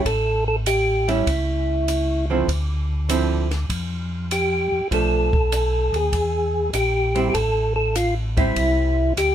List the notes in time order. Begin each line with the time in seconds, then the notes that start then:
0.05 A1 A4, kick, ride
0.48 A4
0.66 G4, hi-hat pedal, ride
1.08 G3 C#4 E4, ride
1.27 C#2, kick, ride
1.88 hi-hat pedal, ride
2.30 D3 F3 C4 E4
2.48 D2, kick, ride
3.09 D3 F3 C4 E4, hi-hat pedal, ride
3.51 snare, ride
3.69 F2, kick, ride
4.31 G4, hi-hat pedal, ride
4.72 F2
4.91 B1 F3 A3 D4 A4, kick, ride
5.33 kick
5.52 hi-hat pedal, ride
5.93 D#2 G#4, ride
6.13 E2, kick, ride
6.73 A#1 G4, hi-hat pedal, ride
7.15 G3 C4 E4, ride
7.30 G4
7.34 A1 A4, kick, ride
7.76 A4
7.95 F4, hi-hat pedal, ride
8.37 G3 C4 E4, kick, ride
8.56 C2, kick, ride
9.17 D2 G4, hi-hat pedal, ride